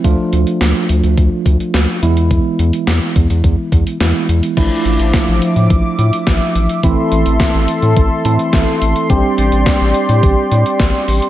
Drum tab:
CC |----------------|----------------|x---------------|----------------|
HH |x-xxx-xxx-xxx-xx|x-xxx-xxx-xxx-xx|x-xxx-xxx-xxx-xx|x-xxx-xxx-xxx-xx|
SD |----o-------o---|----o-------o---|----o-------o---|----o-------o---|
BD |o-------o-o-----|o-----o-o-o-----|o---o---o---o---|o---o---o---o---|

CC |----------------|
HH |x-xxx-xxx-xxx-ox|
SD |----o-------o---|
BD |o---o---o---o---|